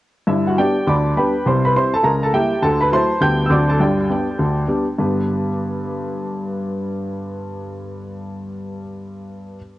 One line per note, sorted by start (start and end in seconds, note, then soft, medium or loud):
0.27 0.52 G1 soft
0.27 0.52 G2 medium
0.27 0.46 E4 medium
0.27 0.46 E5 medium
0.47 0.57 F#4 soft
0.47 0.58 F#5 soft
0.58 0.74 G3 soft
0.58 0.74 B3 soft
0.58 0.74 D4 soft
0.58 0.86 G4 medium
0.58 0.86 D5 soft
0.58 0.87 G5 medium
0.87 1.12 D2 soft
0.87 1.12 D3 medium
0.87 1.15 D5 soft
0.87 1.15 B5 soft
0.87 1.16 D6 medium
1.16 1.32 G3 soft
1.16 1.33 B3 soft
1.16 1.33 D4 soft
1.16 1.45 B4 medium
1.16 1.44 G5 soft
1.16 1.46 B5 medium
1.46 1.71 C2 soft
1.46 1.70 C3 medium
1.46 1.64 C5 medium
1.46 1.65 C6 medium
1.65 1.75 B4 medium
1.65 1.75 B5 medium
1.75 1.91 G3 soft
1.75 1.91 C4 soft
1.75 1.92 E4 soft
1.75 1.93 C5 medium
1.75 1.94 C6 medium
1.94 2.04 A4 medium
1.94 2.04 A5 medium
2.03 2.28 C#2 medium
2.03 2.29 C#3 medium
2.03 2.22 A#4 medium
2.03 2.23 A#5 medium
2.23 2.33 A4 medium
2.23 2.34 A5 medium
2.33 2.49 G3 soft
2.33 2.50 A#3 soft
2.33 2.50 E4 soft
2.33 2.61 G4 medium
2.33 2.61 E5 medium
2.33 2.63 G5 medium
2.62 2.87 D2 medium
2.62 2.87 D3 medium
2.62 2.81 A4 medium
2.62 2.81 A5 medium
2.81 2.92 B4 medium
2.81 2.92 B5 medium
2.92 3.08 F#3 medium
2.92 3.09 A3 soft
2.92 3.09 E4 soft
2.92 3.21 C5 medium
2.92 3.21 A5 medium
2.92 3.22 C6 medium
3.21 3.46 D2 medium
3.21 3.46 D3 medium
3.21 3.37 G3 soft
3.21 3.38 B3 soft
3.21 3.38 D4 soft
3.21 3.45 G5 medium
3.21 3.46 G6 medium
3.46 3.75 D2 medium
3.46 3.75 D3 medium
3.46 3.66 F#3 soft
3.46 3.51 E6 medium
3.50 3.67 C4 soft
3.50 3.67 D4 soft
3.50 3.69 D5 medium
3.50 3.69 D6 medium
3.69 3.80 A4 soft
3.69 3.80 A5 medium
3.80 4.05 G1 soft
3.80 4.05 G2 medium
3.80 4.65 G4 soft
3.80 4.65 D5 soft
3.80 4.69 G5 medium
4.09 4.26 G3 soft
4.09 4.26 B3 soft
4.09 4.26 D4 soft
4.39 4.64 D2 medium
4.39 4.64 D3 soft
4.67 4.84 G3 soft
4.67 4.84 B3 soft
4.67 4.85 D4 soft
4.98 8.81 G2 soft
4.98 8.81 D3 soft
4.98 8.81 B3 soft
4.98 8.81 D4 soft
4.98 8.82 G4 soft
4.98 8.82 B4 soft